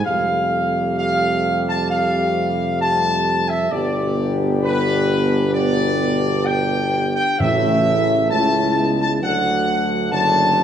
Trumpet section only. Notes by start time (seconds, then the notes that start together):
0.05 F5
0.98 F5
1.68 A5
1.90 F5
2.81 A5
3.49 E5
3.71 D5
4.63 B4
5.54 D5
6.46 G5
7.16 G5
7.39 E5
8.30 A5
9.00 A5
9.23 F#5
10.12 A5